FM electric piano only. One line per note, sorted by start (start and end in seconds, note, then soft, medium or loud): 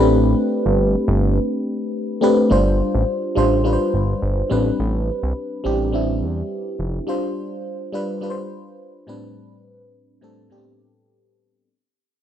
0.00 0.95 A3 medium
0.00 0.95 C4 medium
0.00 0.96 D4 medium
0.00 0.96 G4 medium
0.00 0.96 B4 loud
2.21 2.47 A3 medium
2.21 2.48 C4 medium
2.21 2.48 D4 medium
2.21 2.48 G4 medium
2.21 2.48 B4 medium
2.50 3.27 G3 medium
2.50 3.27 D4 medium
2.50 3.27 F4 medium
2.50 3.28 C5 medium
3.35 3.61 G3 medium
3.35 3.62 D4 medium
3.35 3.62 F4 medium
3.35 3.63 C5 loud
3.64 4.48 G3 medium
3.64 4.50 D4 medium
3.64 4.51 F4 medium
3.64 3.73 B4 medium
3.73 4.55 C5 medium
4.50 5.52 G3 medium
4.50 5.52 C4 medium
4.50 5.53 D4 medium
4.50 5.53 B4 medium
5.64 5.90 G3 medium
5.64 5.90 C4 medium
5.64 5.91 D4 medium
5.64 5.91 G4 medium
5.92 6.95 G3 medium
5.92 6.95 C4 medium
5.92 6.96 D4 medium
5.92 6.96 E4 medium
7.07 7.84 G3 medium
7.07 7.84 D4 medium
7.07 7.85 F4 medium
7.07 7.85 C5 medium
7.92 8.19 G3 medium
7.92 8.19 D4 medium
7.92 8.19 F4 medium
7.92 8.20 B4 medium
8.21 9.06 G3 medium
8.21 9.08 D4 medium
8.21 9.08 F4 medium
8.21 8.30 B4 medium
8.30 9.12 C5 medium
9.07 10.09 A2 medium
9.07 10.10 G3 medium
9.07 10.10 C4 medium
9.07 10.10 D4 medium
9.07 10.10 B4 medium
10.21 10.47 A2 medium
10.21 10.48 G3 medium
10.21 10.48 C4 medium
10.21 10.48 D4 medium
10.21 10.49 A4 medium
10.50 11.52 A2 medium
10.50 11.52 G3 medium
10.50 10.58 B3 medium
10.50 11.53 D4 medium
10.50 11.53 G4 medium
10.57 11.56 C4 medium